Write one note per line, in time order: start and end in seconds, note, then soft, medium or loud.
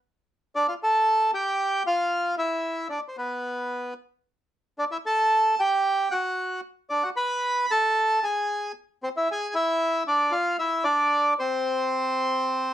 0.55 0.67 D4 medium
0.55 0.67 D5 medium
0.68 0.74 F4 medium
0.68 0.74 F5 medium
0.83 1.31 A4 medium
0.83 1.31 A5 medium
1.34 1.83 G4 medium
1.34 1.83 G5 loud
1.86 2.35 F4 medium
1.86 2.35 F5 medium
2.37 2.87 E4 medium
2.37 2.88 E5 medium
2.89 2.99 D4 medium
2.89 3.00 D5 medium
3.08 3.17 C5 medium
3.17 3.93 B3 medium
3.17 3.94 B4 medium
4.78 4.84 D4 medium
4.78 4.85 D5 medium
4.91 4.97 E4 medium
4.91 4.98 E5 medium
5.06 5.55 A4 medium
5.06 5.61 A5 medium
5.59 6.09 G4 medium
5.59 6.14 G5 medium
6.11 6.61 F#4 medium
6.11 6.60 F#5 medium
6.90 7.03 D4 medium
6.90 7.04 D5 medium
7.03 7.10 F#4 medium
7.03 7.09 F#5 medium
7.16 7.66 B4 medium
7.16 7.71 B5 medium
7.71 8.19 A4 medium
7.71 8.24 A5 medium
8.23 8.72 G#4 medium
8.23 8.72 G#5 medium
9.03 9.09 C4 medium
9.03 9.09 C5 medium
9.17 9.28 E4 medium
9.17 9.29 E5 medium
9.31 9.54 G#4 medium
9.31 9.55 G#5 medium
9.54 10.03 E4 medium
9.54 10.04 E5 loud
10.07 10.32 D4 medium
10.07 10.34 D5 medium
10.31 10.57 F4 medium
10.31 10.57 F5 medium
10.59 10.84 E4 medium
10.59 10.84 E5 medium
10.84 11.34 D4 medium
10.84 11.34 D5 medium
11.39 12.74 C4 medium
11.39 12.74 C5 medium